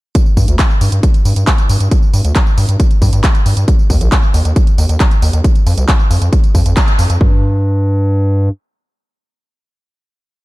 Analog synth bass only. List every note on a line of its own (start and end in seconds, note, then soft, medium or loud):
0.37 0.45 G2 medium
0.48 0.56 D2 medium
0.81 0.89 G2 loud
0.92 1.00 G2 medium
1.25 1.33 G2 loud
1.36 1.44 G2 medium
1.69 1.77 G2 loud
1.80 1.88 G2 medium
2.14 2.21 G2 loud
2.25 2.32 D2 medium
2.58 2.65 G2 medium
2.69 2.76 G2 medium
3.02 3.10 G2 loud
3.13 3.21 G2 medium
3.46 3.54 G2 loud
3.57 3.65 G2 medium
3.90 3.98 D#2 medium
4.01 4.09 A#1 medium
4.34 4.42 D#2 loud
4.45 4.53 D#2 medium
4.78 4.86 D#2 loud
4.89 4.97 D#2 medium
5.22 5.30 D#2 loud
5.33 5.41 D#2 medium
5.67 5.74 F2 medium
5.78 5.85 C2 medium
6.11 6.18 F2 medium
6.22 6.29 F2 medium
6.55 6.62 F2 loud
6.66 6.74 F2 medium
6.99 7.07 F2 loud
7.10 7.18 F2 medium
7.21 8.49 G2 loud